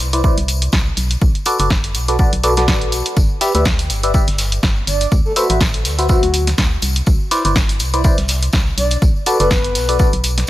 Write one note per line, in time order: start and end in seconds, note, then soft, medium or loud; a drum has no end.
0.00 0.32 C2 medium
0.00 open hi-hat medium
0.13 0.21 E4 medium
0.13 0.21 B4 medium
0.13 0.21 C5 medium
0.13 0.21 D5 medium
0.13 closed hi-hat medium
0.13 tambourine soft
0.24 0.36 E4 medium
0.24 0.36 B4 medium
0.24 0.36 C5 medium
0.24 0.36 D5 loud
0.24 kick loud
0.24 tambourine soft
0.37 0.69 C2 loud
0.37 closed hi-hat medium
0.37 tambourine soft
0.48 open hi-hat loud
0.48 tambourine medium
0.62 closed hi-hat medium
0.62 tambourine soft
0.72 0.92 C2 loud
0.72 kick loud
0.72 snare loud
0.72 tambourine soft
0.87 tambourine soft
0.97 1.16 B1 medium
0.97 open hi-hat medium
0.97 tambourine medium
1.11 closed hi-hat medium
1.11 tambourine soft
1.21 1.32 B1 medium
1.21 kick loud
1.21 tambourine medium
1.35 closed hi-hat soft
1.35 tambourine soft
1.45 1.58 F#4 loud
1.45 1.58 A4 medium
1.45 1.58 B4 medium
1.45 1.58 D5 loud
1.45 open hi-hat loud
1.45 tambourine medium
1.58 1.96 F#1 medium
1.58 1.69 F#4 medium
1.58 1.69 A4 medium
1.58 1.69 B4 medium
1.58 1.69 D5 medium
1.58 closed hi-hat medium
1.58 tambourine soft
1.70 kick loud
1.70 snare loud
1.70 tambourine medium
1.84 closed hi-hat medium
1.84 tambourine soft
1.95 2.28 B1 medium
1.95 open hi-hat medium
1.95 tambourine medium
2.08 2.17 F#4 medium
2.08 2.17 A4 medium
2.08 2.17 B4 medium
2.08 2.17 D5 medium
2.08 closed hi-hat medium
2.08 tambourine soft
2.19 2.31 F#4 medium
2.19 2.31 A4 medium
2.19 2.31 B4 medium
2.19 2.31 D5 loud
2.19 kick loud
2.19 tambourine soft
2.33 2.69 B1 loud
2.33 closed hi-hat medium
2.33 tambourine soft
2.43 2.54 F#4 medium
2.43 2.54 A4 medium
2.43 2.54 B4 medium
2.43 2.54 D5 loud
2.43 open hi-hat loud
2.43 tambourine medium
2.56 2.66 F#4 medium
2.56 2.66 A4 medium
2.56 2.66 B4 medium
2.56 2.66 D5 medium
2.56 snare soft
2.56 closed hi-hat medium
2.56 tambourine soft
2.68 2.94 A1 medium
2.68 3.15 F#4 medium
2.68 3.15 B4 medium
2.68 kick loud
2.68 snare loud
2.68 tambourine soft
2.81 closed hi-hat soft
2.81 tambourine soft
2.92 3.03 B1 medium
2.92 open hi-hat medium
2.92 tambourine medium
3.06 closed hi-hat medium
3.06 tambourine soft
3.17 3.27 G1 medium
3.17 kick loud
3.17 tambourine medium
3.30 tambourine soft
3.41 3.53 G4 medium
3.41 3.53 B4 medium
3.41 3.53 D5 medium
3.41 3.53 E5 loud
3.41 snare soft
3.41 open hi-hat loud
3.41 tambourine medium
3.55 3.91 D2 medium
3.55 3.65 G4 medium
3.55 3.64 B4 medium
3.55 3.64 D5 medium
3.55 3.65 E5 medium
3.55 closed hi-hat medium
3.65 kick loud
3.65 snare loud
3.65 tambourine medium
3.65 tambourine soft
3.79 closed hi-hat soft
3.79 closed hi-hat medium
3.79 tambourine soft
3.90 4.23 G1 medium
3.90 open hi-hat medium
3.90 tambourine medium
4.03 4.12 G4 medium
4.03 4.12 B4 medium
4.03 4.12 D5 medium
4.03 4.12 E5 medium
4.03 closed hi-hat medium
4.03 tambourine soft
4.14 4.27 G4 medium
4.14 4.27 B4 medium
4.14 4.27 D5 medium
4.14 4.27 E5 loud
4.14 kick loud
4.14 tambourine medium
4.27 4.59 G1 loud
4.27 snare soft
4.27 closed hi-hat medium
4.27 tambourine soft
4.38 snare medium
4.38 open hi-hat loud
4.38 tambourine medium
4.52 closed hi-hat medium
4.52 tambourine soft
4.63 4.82 G1 loud
4.63 kick loud
4.63 snare loud
4.63 tambourine soft
4.63 tambourine medium
4.76 tambourine soft
4.87 5.07 G1 medium
4.87 5.07 D5 medium
4.87 open hi-hat medium
4.87 tambourine medium
5.00 closed hi-hat soft
5.00 closed hi-hat medium
5.00 tambourine soft
5.12 5.22 D2 medium
5.12 kick loud
5.12 tambourine soft
5.12 tambourine medium
5.25 5.32 A4 medium
5.25 tambourine soft
5.36 5.48 F#4 loud
5.36 5.45 A4 medium
5.36 5.48 B4 medium
5.36 5.48 C5 medium
5.36 5.48 E5 loud
5.36 open hi-hat loud
5.36 tambourine medium
5.36 tambourine loud
5.49 5.86 A1 medium
5.49 5.60 F#4 medium
5.49 5.60 B4 medium
5.49 5.60 C5 medium
5.49 5.60 E5 medium
5.49 closed hi-hat medium
5.49 tambourine soft
5.60 kick loud
5.60 snare loud
5.60 tambourine medium
5.74 closed hi-hat medium
5.85 6.18 D2 medium
5.85 snare medium
5.85 open hi-hat medium
5.85 tambourine medium
5.99 6.07 F#4 medium
5.99 6.07 B4 medium
5.99 6.07 C5 medium
5.99 6.07 E5 medium
5.99 closed hi-hat medium
5.99 closed hi-hat soft
5.99 tambourine soft
6.09 6.47 F#4 loud
6.09 6.22 F#4 medium
6.09 6.22 B4 medium
6.09 6.22 C5 medium
6.09 6.22 E5 loud
6.09 kick loud
6.09 tambourine soft
6.09 tambourine medium
6.23 6.54 D2 loud
6.23 closed hi-hat medium
6.23 tambourine soft
6.34 open hi-hat loud
6.34 tambourine medium
6.47 snare soft
6.47 closed hi-hat medium
6.47 tambourine soft
6.58 6.77 D2 medium
6.58 kick loud
6.58 snare loud
6.58 tambourine medium
6.72 tambourine soft
6.82 7.02 C2 medium
6.82 open hi-hat medium
6.82 tambourine medium
6.95 closed hi-hat medium
6.95 tambourine soft
7.06 7.17 C2 medium
7.06 kick loud
7.06 tambourine medium
7.20 tambourine soft
7.31 7.43 E4 medium
7.31 7.43 B4 medium
7.31 7.43 C5 medium
7.31 7.43 D5 loud
7.31 snare soft
7.31 open hi-hat loud
7.31 tambourine medium
7.45 7.82 G1 medium
7.45 7.55 E4 medium
7.45 7.55 B4 medium
7.45 7.55 C5 medium
7.45 7.55 D5 medium
7.45 closed hi-hat medium
7.45 tambourine soft
7.56 kick loud
7.56 snare loud
7.56 tambourine medium
7.69 closed hi-hat soft
7.69 tambourine soft
7.79 8.13 C2 medium
7.79 open hi-hat medium
7.79 tambourine medium
7.79 tambourine loud
7.94 8.02 E4 medium
7.94 8.02 B4 medium
7.94 8.02 C5 medium
7.94 8.02 D5 medium
7.94 closed hi-hat medium
7.94 tambourine soft
8.04 8.17 E4 medium
8.04 8.17 B4 medium
8.04 8.17 C5 medium
8.04 8.17 D5 loud
8.04 kick loud
8.04 tambourine medium
8.17 8.49 C2 loud
8.17 snare soft
8.17 closed hi-hat soft
8.17 tambourine soft
8.28 snare medium
8.28 open hi-hat loud
8.28 tambourine medium
8.42 closed hi-hat medium
8.42 tambourine soft
8.53 8.73 C2 loud
8.53 kick loud
8.53 snare loud
8.53 tambourine medium
8.66 tambourine soft
8.78 8.97 B1 medium
8.78 8.97 D5 medium
8.78 open hi-hat medium
8.78 tambourine medium
8.91 closed hi-hat soft
8.91 closed hi-hat medium
8.91 tambourine soft
9.02 9.12 B1 medium
9.02 kick loud
9.02 tambourine medium
9.16 tambourine soft
9.26 9.38 F#4 loud
9.26 9.38 A4 medium
9.26 9.38 B4 medium
9.26 9.38 D5 loud
9.26 open hi-hat loud
9.26 tambourine medium
9.40 9.77 F#1 medium
9.40 9.50 F#4 medium
9.40 9.50 A4 medium
9.40 10.08 B4 loud
9.40 9.50 B4 medium
9.40 9.50 D5 medium
9.40 closed hi-hat medium
9.51 kick loud
9.51 snare loud
9.51 tambourine medium
9.64 closed hi-hat soft
9.64 tambourine soft
9.75 10.08 B1 medium
9.75 snare medium
9.75 open hi-hat medium
9.75 tambourine medium
9.89 9.97 F#4 medium
9.89 9.97 A4 medium
9.89 9.97 B4 medium
9.89 9.97 D5 medium
9.89 closed hi-hat medium
9.89 closed hi-hat soft
9.89 tambourine soft
9.99 10.12 F#4 medium
9.99 10.12 A4 medium
9.99 10.12 B4 medium
9.99 10.12 D5 loud
9.99 kick loud
9.99 tambourine medium
9.99 tambourine soft
10.13 10.44 B1 loud
10.13 closed hi-hat soft
10.13 tambourine soft
10.24 open hi-hat loud
10.24 tambourine medium
10.38 snare soft
10.38 closed hi-hat medium
10.38 tambourine soft